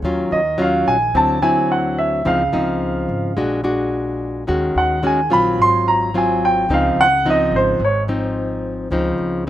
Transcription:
0.02 upright bass D#2, nylon-string guitar D#3 F#3 C#4 F4
0.31 upright bass D#2, grand piano D#5
0.58 nylon-string guitar F#3 C#4 F4, grand piano F5
0.86 upright bass A#1, grand piano G#5
1.14 upright bass D2, nylon-string guitar D3 F#3 C4 E4, grand piano A5
1.42 nylon-string guitar F#3 C4 E4, grand piano G#5
1.72 grand piano F#5
1.98 grand piano E5
2.25 upright bass C#2, nylon-string guitar C#3 F3 C4 D#4, grand piano F5
2.53 upright bass C#2, nylon-string guitar F3 C4 D#4
3.09 upright bass G#1
3.37 upright bass A#1, nylon-string guitar A#2 G#3 D4 F#4
3.64 nylon-string guitar G#3 D4 F#4
4.47 upright bass D#2, nylon-string guitar D#3 G#3 C#4 F#4
4.76 upright bass D#2, grand piano F#5
5.03 nylon-string guitar G#3 C#4 F#4, grand piano G#5
5.30 upright bass A#1, nylon-string guitar F#3 C4 F4, grand piano B5
5.58 upright bass G#1, nylon-string guitar G#2, grand piano C6
5.88 grand piano A#5
6.14 nylon-string guitar F#3 C4 F4, grand piano G#5
6.45 grand piano G5
6.69 upright bass C#2, nylon-string guitar C#3 F3 C4 D#4
6.74 grand piano F5
6.97 upright bass C#2
7.01 grand piano F#5
7.26 nylon-string guitar F3 C4 D#4
7.30 grand piano D#5
7.52 upright bass G#1
7.56 grand piano C5
7.80 upright bass G#1, nylon-string guitar G#2
7.84 grand piano C#5
8.08 nylon-string guitar F3 C4 D#4
8.90 upright bass C#2, nylon-string guitar C#3 F3 C4 D#4
9.18 upright bass C#2

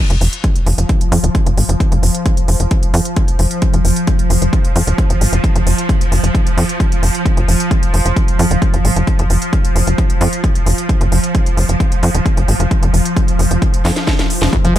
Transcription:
0.00 synth drone F3
0.10 analog synth bass F1, closed hi-hat
0.21 analog synth bass F1, open hi-hat
0.33 closed hi-hat
0.44 kick, closed hi-hat
0.56 closed hi-hat
0.67 analog synth bass F1, open hi-hat
0.78 analog synth bass F1, closed hi-hat
0.89 kick, closed hi-hat
1.01 closed hi-hat
1.12 analog synth bass F2, open hi-hat
1.24 analog synth bass D#1, closed hi-hat
1.35 kick, closed hi-hat
1.46 analog synth bass F1, closed hi-hat
1.57 analog synth bass G#1, open hi-hat
1.69 analog synth bass F1, closed hi-hat
1.80 kick, closed hi-hat
1.92 analog synth bass F1, closed hi-hat
2.03 analog synth bass F1, open hi-hat
2.15 closed hi-hat
2.26 kick, closed hi-hat
2.37 closed hi-hat
2.48 analog synth bass F1, open hi-hat
2.60 analog synth bass F1, closed hi-hat
2.71 kick, closed hi-hat
2.83 closed hi-hat
2.94 analog synth bass F2, open hi-hat
3.05 closed hi-hat
3.16 kick, closed hi-hat
3.28 closed hi-hat
3.39 analog synth bass F1, open hi-hat
3.51 closed hi-hat
3.62 kick, closed hi-hat
3.74 analog synth bass F1, closed hi-hat
3.85 analog synth bass F1, open hi-hat
3.96 closed hi-hat
4.07 kick, closed hi-hat
4.19 closed hi-hat
4.30 analog synth bass F1, open hi-hat
4.42 analog synth bass F1, closed hi-hat
4.53 kick, closed hi-hat
4.65 closed hi-hat
4.76 analog synth bass F2, open hi-hat
4.87 analog synth bass D#1, closed hi-hat
4.98 kick, closed hi-hat
5.10 analog synth bass F1, closed hi-hat
5.21 analog synth bass G#1, open hi-hat
5.33 analog synth bass F1, closed hi-hat
5.44 kick, closed hi-hat
5.55 analog synth bass F1, closed hi-hat
5.67 analog synth bass F1, open hi-hat
5.78 closed hi-hat
5.89 kick, closed hi-hat
6.01 closed hi-hat
6.12 analog synth bass F1, open hi-hat
6.24 analog synth bass F1, closed hi-hat
6.35 kick, closed hi-hat
6.47 closed hi-hat
6.57 analog synth bass F2, open hi-hat
6.69 closed hi-hat
6.80 kick, closed hi-hat
6.92 closed hi-hat
7.03 analog synth bass F1, open hi-hat
7.15 closed hi-hat
7.26 kick, closed hi-hat
7.37 analog synth bass F1, closed hi-hat
7.48 analog synth bass F1, open hi-hat
7.60 closed hi-hat
7.71 kick, closed hi-hat
7.83 closed hi-hat
7.94 analog synth bass F1, open hi-hat
8.05 analog synth bass F1, closed hi-hat
8.16 kick, closed hi-hat
8.28 closed hi-hat
8.39 analog synth bass F2, open hi-hat
8.51 analog synth bass D#1, closed hi-hat
8.62 kick, closed hi-hat
8.74 analog synth bass F1, closed hi-hat
8.85 analog synth bass G#1, open hi-hat
8.96 analog synth bass F1, closed hi-hat
9.07 kick, closed hi-hat
9.19 analog synth bass F1, closed hi-hat
9.30 analog synth bass F1, open hi-hat
9.42 closed hi-hat
9.53 kick, closed hi-hat
9.65 closed hi-hat
9.76 analog synth bass F1, open hi-hat
9.87 analog synth bass F1, closed hi-hat
9.98 kick, closed hi-hat
10.10 closed hi-hat
10.21 analog synth bass F2, open hi-hat
10.33 closed hi-hat
10.44 kick, closed hi-hat
10.55 closed hi-hat
10.66 analog synth bass F1, open hi-hat
10.78 closed hi-hat
10.89 kick, closed hi-hat
11.01 analog synth bass F1, closed hi-hat
11.12 analog synth bass F1, open hi-hat
11.24 closed hi-hat
11.35 kick, closed hi-hat
11.46 closed hi-hat
11.57 analog synth bass F1, open hi-hat
11.69 analog synth bass F1, closed hi-hat
11.80 kick, closed hi-hat
11.92 closed hi-hat
12.03 analog synth bass F2, open hi-hat
12.15 analog synth bass D#1, closed hi-hat
12.26 kick, closed hi-hat
12.37 analog synth bass F1, closed hi-hat
12.48 analog synth bass G#1, open hi-hat
12.60 analog synth bass F1, closed hi-hat
12.71 kick, closed hi-hat
12.83 analog synth bass F1, closed hi-hat
12.94 analog synth bass F1, open hi-hat
13.05 closed hi-hat
13.17 kick, closed hi-hat
13.28 closed hi-hat
13.39 analog synth bass F1, open hi-hat
13.51 analog synth bass F1, closed hi-hat
13.62 kick, closed hi-hat
13.74 closed hi-hat
13.85 analog synth bass F2, snare, open hi-hat
13.96 snare, closed hi-hat
14.07 kick, snare, closed hi-hat
14.19 snare, closed hi-hat
14.30 open hi-hat
14.42 analog synth bass F1, snare, open hi-hat
14.53 acid bass F2, synth drone F3, kick, closed hi-hat
14.64 analog synth bass F1, acid bass F3, closed hi-hat

